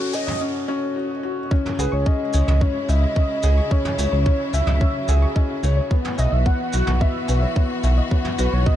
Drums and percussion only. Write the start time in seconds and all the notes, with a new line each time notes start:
0.13 shaker
0.28 mid tom
1.51 kick
1.66 mid tom
1.79 shaker
2.06 kick
2.33 shaker
2.48 mid tom
2.61 kick
2.89 shaker
3.16 kick
3.43 shaker
3.71 kick
3.85 mid tom
3.99 shaker
4.26 kick
4.54 shaker
4.67 mid tom
4.81 kick
5.08 shaker
5.36 kick
5.63 shaker
5.91 kick
6.05 mid tom
6.18 shaker
6.46 kick
6.73 shaker
6.87 mid tom
7.01 kick
7.28 shaker
7.56 kick
7.83 shaker
8.11 kick
8.25 mid tom
8.39 shaker
8.66 kick